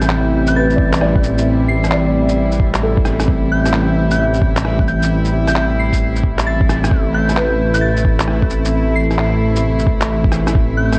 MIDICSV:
0, 0, Header, 1, 6, 480
1, 0, Start_track
1, 0, Tempo, 454545
1, 1543, Time_signature, 4, 2, 24, 8
1, 11604, End_track
2, 0, Start_track
2, 0, Title_t, "Synth bell"
2, 0, Program_c, 0, 98
2, 0, Note_on_c, 0, 91, 94
2, 470, Note_off_c, 0, 91, 0
2, 507, Note_on_c, 0, 91, 93
2, 570, Note_off_c, 0, 91, 0
2, 595, Note_on_c, 0, 93, 93
2, 985, Note_off_c, 0, 93, 0
2, 1780, Note_on_c, 0, 96, 96
2, 2468, Note_off_c, 0, 96, 0
2, 3713, Note_on_c, 0, 91, 95
2, 4313, Note_off_c, 0, 91, 0
2, 4344, Note_on_c, 0, 91, 91
2, 4409, Note_off_c, 0, 91, 0
2, 5152, Note_on_c, 0, 91, 88
2, 5403, Note_off_c, 0, 91, 0
2, 5786, Note_on_c, 0, 91, 92
2, 6031, Note_off_c, 0, 91, 0
2, 6117, Note_on_c, 0, 96, 89
2, 6365, Note_off_c, 0, 96, 0
2, 6827, Note_on_c, 0, 93, 92
2, 7367, Note_off_c, 0, 93, 0
2, 7544, Note_on_c, 0, 91, 93
2, 8148, Note_off_c, 0, 91, 0
2, 8175, Note_on_c, 0, 91, 98
2, 8244, Note_off_c, 0, 91, 0
2, 8251, Note_on_c, 0, 93, 90
2, 8653, Note_off_c, 0, 93, 0
2, 9458, Note_on_c, 0, 96, 96
2, 10147, Note_off_c, 0, 96, 0
2, 11377, Note_on_c, 0, 91, 89
2, 11604, Note_off_c, 0, 91, 0
2, 11604, End_track
3, 0, Start_track
3, 0, Title_t, "Felt piano"
3, 0, Program_c, 1, 0
3, 0, Control_c, 1, 64, 127
3, 594, Note_on_c, 1, 71, 60
3, 802, Note_on_c, 1, 74, 56
3, 1060, Note_off_c, 1, 74, 0
3, 1075, Note_on_c, 1, 74, 85
3, 1212, Note_off_c, 1, 71, 0
3, 1693, Note_off_c, 1, 74, 0
3, 2034, Note_on_c, 1, 74, 79
3, 2652, Note_off_c, 1, 74, 0
3, 2991, Note_on_c, 1, 69, 62
3, 3611, Note_off_c, 1, 69, 0
3, 4426, Note_on_c, 1, 76, 56
3, 5048, Note_off_c, 1, 76, 0
3, 7319, Control_c, 1, 64, 0
3, 7494, Control_c, 1, 64, 127
3, 7786, Note_on_c, 1, 71, 71
3, 8408, Note_off_c, 1, 71, 0
3, 11604, End_track
4, 0, Start_track
4, 0, Title_t, "String section"
4, 0, Program_c, 2, 48
4, 0, Note_on_c, 2, 48, 82
4, 0, Note_on_c, 2, 52, 77
4, 0, Note_on_c, 2, 55, 76
4, 0, Note_on_c, 2, 64, 90
4, 7262, Note_off_c, 2, 48, 0
4, 7264, Note_off_c, 2, 52, 0
4, 7269, Note_off_c, 2, 55, 0
4, 7313, Note_on_c, 2, 48, 80
4, 7314, Note_on_c, 2, 52, 73
4, 7314, Note_on_c, 2, 57, 73
4, 11604, Note_off_c, 2, 48, 0
4, 11604, Note_off_c, 2, 52, 0
4, 11604, Note_off_c, 2, 57, 0
4, 11604, Note_off_c, 2, 64, 0
4, 11604, End_track
5, 0, Start_track
5, 0, Title_t, "Detuned saw bass"
5, 0, Program_c, 3, 39
5, 0, Note_on_c, 3, 33, 90
5, 7288, Note_off_c, 3, 33, 0
5, 7302, Note_on_c, 3, 33, 94
5, 11604, Note_off_c, 3, 33, 0
5, 11604, End_track
6, 0, Start_track
6, 0, Title_t, "Drums"
6, 19, Note_on_c, 9, 37, 34
6, 19, Note_on_c, 9, 82, 53
6, 101, Note_on_c, 9, 39, 109
6, 124, Note_off_c, 9, 37, 0
6, 124, Note_off_c, 9, 82, 0
6, 207, Note_off_c, 9, 39, 0
6, 496, Note_on_c, 9, 82, 52
6, 602, Note_off_c, 9, 82, 0
6, 740, Note_on_c, 9, 82, 28
6, 826, Note_on_c, 9, 36, 108
6, 846, Note_off_c, 9, 82, 0
6, 932, Note_off_c, 9, 36, 0
6, 984, Note_on_c, 9, 39, 101
6, 984, Note_on_c, 9, 82, 52
6, 1069, Note_on_c, 9, 37, 56
6, 1089, Note_off_c, 9, 39, 0
6, 1089, Note_off_c, 9, 82, 0
6, 1175, Note_off_c, 9, 37, 0
6, 1222, Note_on_c, 9, 36, 113
6, 1304, Note_on_c, 9, 82, 43
6, 1327, Note_off_c, 9, 36, 0
6, 1410, Note_off_c, 9, 82, 0
6, 1460, Note_on_c, 9, 82, 57
6, 1566, Note_off_c, 9, 82, 0
6, 1944, Note_on_c, 9, 37, 37
6, 1944, Note_on_c, 9, 82, 50
6, 2023, Note_on_c, 9, 39, 109
6, 2050, Note_off_c, 9, 37, 0
6, 2050, Note_off_c, 9, 82, 0
6, 2129, Note_off_c, 9, 39, 0
6, 2419, Note_on_c, 9, 82, 54
6, 2525, Note_off_c, 9, 82, 0
6, 2658, Note_on_c, 9, 82, 28
6, 2744, Note_on_c, 9, 36, 105
6, 2764, Note_off_c, 9, 82, 0
6, 2850, Note_off_c, 9, 36, 0
6, 2897, Note_on_c, 9, 39, 98
6, 2897, Note_on_c, 9, 82, 53
6, 3003, Note_off_c, 9, 39, 0
6, 3003, Note_off_c, 9, 82, 0
6, 3141, Note_on_c, 9, 36, 108
6, 3222, Note_on_c, 9, 37, 65
6, 3222, Note_on_c, 9, 82, 43
6, 3246, Note_off_c, 9, 36, 0
6, 3328, Note_off_c, 9, 37, 0
6, 3328, Note_off_c, 9, 82, 0
6, 3376, Note_on_c, 9, 37, 66
6, 3376, Note_on_c, 9, 82, 58
6, 3463, Note_on_c, 9, 36, 110
6, 3481, Note_off_c, 9, 37, 0
6, 3481, Note_off_c, 9, 82, 0
6, 3569, Note_off_c, 9, 36, 0
6, 3860, Note_on_c, 9, 37, 37
6, 3860, Note_on_c, 9, 82, 53
6, 3942, Note_on_c, 9, 39, 104
6, 3966, Note_off_c, 9, 37, 0
6, 3966, Note_off_c, 9, 82, 0
6, 4047, Note_off_c, 9, 39, 0
6, 4340, Note_on_c, 9, 82, 59
6, 4446, Note_off_c, 9, 82, 0
6, 4579, Note_on_c, 9, 82, 31
6, 4663, Note_on_c, 9, 36, 106
6, 4684, Note_off_c, 9, 82, 0
6, 4769, Note_off_c, 9, 36, 0
6, 4822, Note_on_c, 9, 39, 99
6, 4822, Note_on_c, 9, 82, 52
6, 4907, Note_on_c, 9, 37, 60
6, 4927, Note_off_c, 9, 39, 0
6, 4927, Note_off_c, 9, 82, 0
6, 5013, Note_off_c, 9, 37, 0
6, 5059, Note_on_c, 9, 36, 108
6, 5149, Note_on_c, 9, 82, 44
6, 5164, Note_off_c, 9, 36, 0
6, 5254, Note_off_c, 9, 82, 0
6, 5305, Note_on_c, 9, 82, 60
6, 5411, Note_off_c, 9, 82, 0
6, 5543, Note_on_c, 9, 82, 32
6, 5648, Note_off_c, 9, 82, 0
6, 5780, Note_on_c, 9, 37, 38
6, 5780, Note_on_c, 9, 82, 53
6, 5867, Note_on_c, 9, 39, 105
6, 5886, Note_off_c, 9, 37, 0
6, 5886, Note_off_c, 9, 82, 0
6, 5973, Note_off_c, 9, 39, 0
6, 6260, Note_on_c, 9, 36, 61
6, 6264, Note_on_c, 9, 82, 58
6, 6365, Note_off_c, 9, 36, 0
6, 6369, Note_off_c, 9, 82, 0
6, 6504, Note_on_c, 9, 82, 30
6, 6583, Note_on_c, 9, 36, 102
6, 6610, Note_off_c, 9, 82, 0
6, 6688, Note_off_c, 9, 36, 0
6, 6743, Note_on_c, 9, 39, 99
6, 6743, Note_on_c, 9, 82, 53
6, 6848, Note_off_c, 9, 39, 0
6, 6848, Note_off_c, 9, 82, 0
6, 6978, Note_on_c, 9, 36, 111
6, 7068, Note_on_c, 9, 37, 66
6, 7068, Note_on_c, 9, 82, 47
6, 7084, Note_off_c, 9, 36, 0
6, 7174, Note_off_c, 9, 37, 0
6, 7174, Note_off_c, 9, 82, 0
6, 7223, Note_on_c, 9, 37, 76
6, 7223, Note_on_c, 9, 82, 60
6, 7301, Note_on_c, 9, 36, 123
6, 7329, Note_off_c, 9, 37, 0
6, 7329, Note_off_c, 9, 82, 0
6, 7406, Note_off_c, 9, 36, 0
6, 7700, Note_on_c, 9, 37, 37
6, 7700, Note_on_c, 9, 82, 58
6, 7781, Note_on_c, 9, 39, 108
6, 7805, Note_off_c, 9, 37, 0
6, 7805, Note_off_c, 9, 82, 0
6, 7886, Note_off_c, 9, 39, 0
6, 8177, Note_on_c, 9, 82, 59
6, 8282, Note_off_c, 9, 82, 0
6, 8416, Note_on_c, 9, 82, 32
6, 8500, Note_on_c, 9, 36, 110
6, 8522, Note_off_c, 9, 82, 0
6, 8606, Note_off_c, 9, 36, 0
6, 8657, Note_on_c, 9, 39, 106
6, 8657, Note_on_c, 9, 82, 55
6, 8740, Note_on_c, 9, 37, 63
6, 8762, Note_off_c, 9, 39, 0
6, 8762, Note_off_c, 9, 82, 0
6, 8846, Note_off_c, 9, 37, 0
6, 8896, Note_on_c, 9, 36, 110
6, 8977, Note_on_c, 9, 82, 49
6, 9002, Note_off_c, 9, 36, 0
6, 9083, Note_off_c, 9, 82, 0
6, 9136, Note_on_c, 9, 82, 62
6, 9241, Note_off_c, 9, 82, 0
6, 9617, Note_on_c, 9, 37, 36
6, 9617, Note_on_c, 9, 82, 58
6, 9700, Note_on_c, 9, 39, 109
6, 9722, Note_off_c, 9, 37, 0
6, 9722, Note_off_c, 9, 82, 0
6, 9805, Note_off_c, 9, 39, 0
6, 10097, Note_on_c, 9, 82, 60
6, 10203, Note_off_c, 9, 82, 0
6, 10341, Note_on_c, 9, 82, 31
6, 10421, Note_on_c, 9, 36, 114
6, 10447, Note_off_c, 9, 82, 0
6, 10526, Note_off_c, 9, 36, 0
6, 10574, Note_on_c, 9, 39, 106
6, 10574, Note_on_c, 9, 82, 55
6, 10680, Note_off_c, 9, 39, 0
6, 10680, Note_off_c, 9, 82, 0
6, 10817, Note_on_c, 9, 36, 119
6, 10896, Note_on_c, 9, 37, 62
6, 10896, Note_on_c, 9, 82, 46
6, 10923, Note_off_c, 9, 36, 0
6, 11002, Note_off_c, 9, 37, 0
6, 11002, Note_off_c, 9, 82, 0
6, 11057, Note_on_c, 9, 37, 70
6, 11057, Note_on_c, 9, 82, 62
6, 11143, Note_on_c, 9, 36, 127
6, 11163, Note_off_c, 9, 37, 0
6, 11163, Note_off_c, 9, 82, 0
6, 11249, Note_off_c, 9, 36, 0
6, 11538, Note_on_c, 9, 37, 35
6, 11538, Note_on_c, 9, 82, 58
6, 11604, Note_off_c, 9, 37, 0
6, 11604, Note_off_c, 9, 82, 0
6, 11604, End_track
0, 0, End_of_file